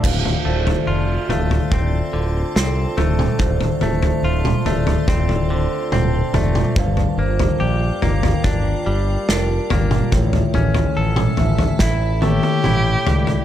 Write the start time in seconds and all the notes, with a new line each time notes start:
0.03 D1 D2 F4 C5 D5 F5 A5, kick, floor tom, crash
0.25 floor tom
0.45 D1 A3 C5
0.67 floor tom
0.87 F1 F4 D5
1.29 D1 A3 F5, floor tom
1.51 floor tom
1.71 D1 C4 D5, kick, floor tom
2.13 D1 D3
2.55 C2 C4 A4, snare
2.97 D1 A3, floor tom
3.19 mid tom
3.39 D1 D2, kick, floor tom
3.61 floor tom
3.81 D1 A3, floor tom
4.03 floor tom
4.23 D1 F4
4.45 mid tom
4.65 D1 A3 D5, floor tom
4.87 floor tom
5.08 D1 C4 D5, kick, floor tom
5.29 floor tom
5.50 D3 C5
5.92 D1 C4, mid tom
6.33 F1 A3 D5, floor tom, mid tom
6.55 mid tom
6.76 G1 G2 F4 A#4 F5 G5, kick, floor tom
6.97 floor tom
7.18 G1 A#3 C5
7.39 floor tom
7.60 A#1 G4 D5
8.02 G1 A#3 F5, floor tom
8.23 floor tom
8.44 G1 D4 D5, kick, floor tom
8.86 G1 G3
9.29 F1 D4 A#4, snare
9.70 G1 A#3, floor tom
9.91 mid tom
10.12 A1 A2 E4 A4 C#5 E5, kick, floor tom
10.33 floor tom
10.54 A1 C#4, floor tom
10.75 floor tom
10.97 A1 A4
11.16 mid tom
11.37 A1 E5, floor tom
11.58 floor tom
11.79 A1 E4 E5, kick, snare
12.22 A3 G4 C#5, high tom
12.43 high tom
12.64 A1 E4, mid tom
13.07 C#2, floor tom
13.27 floor tom